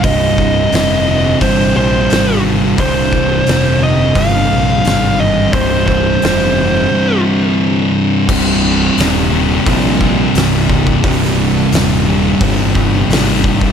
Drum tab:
CC |----------------|----------------|----------------|x---------------|
HH |o---o---o---o---|o---o---o---o---|o---o-----------|----o---o---o---|
SD |----o-------o---|----o-------o---|----o-----------|----o-------o---|
BD |o-o-----o-------|o-o-----o-------|o-o-------------|o-------o-o---oo|

CC |----------------|
HH |o---o---o---o---|
SD |-o--o-------o---|
BD |o-------o-o---oo|